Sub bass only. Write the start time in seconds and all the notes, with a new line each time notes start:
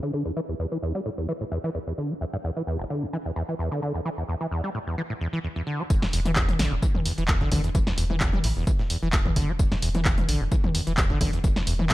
5.90 E1
6.13 E1
6.59 A1
6.72 E1
7.18 E1
7.52 G1
7.75 E1
7.98 E1
8.44 A1
8.56 E1
9.02 E1
9.36 G1
9.59 E1
9.82 E1
10.29 A1
10.41 E1
10.87 E1
11.21 G1
11.44 E1
11.67 E1